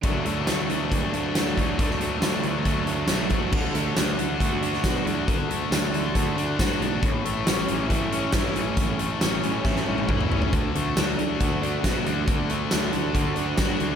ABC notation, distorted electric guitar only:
X:1
M:4/4
L:1/8
Q:1/4=137
K:D
V:1 name="Distorted electric guitar"
[D,F,A,D] [F,A,D] [D,F,A,D] [F,A,D] [D,F,A,D]2 [D,F,A,D] [F,A,D] | [D,F,A,D] [F,A,D] [D,F,A,D] [F,A,D] [D,F,A,D]2 [D,F,A,D] [F,A,D] | D, A, D D, A, D F D | D, A, D D, A, D F D |
A,, A, C E, A, C E C | A,, A, C E, A, C E C | D, A, D D, A, D F D | D, A, D D, A, D F D |]